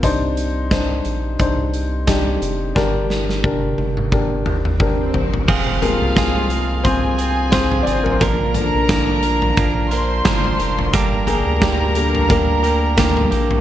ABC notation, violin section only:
X:1
M:4/4
L:1/8
Q:"Swing 16ths" 1/4=88
K:Fdor
V:1 name="Violin section"
z8 | z8 | [Ff]4 [Aa]4 | [Bb]4- [Bb] [cc']3 |
[Bb]8 |]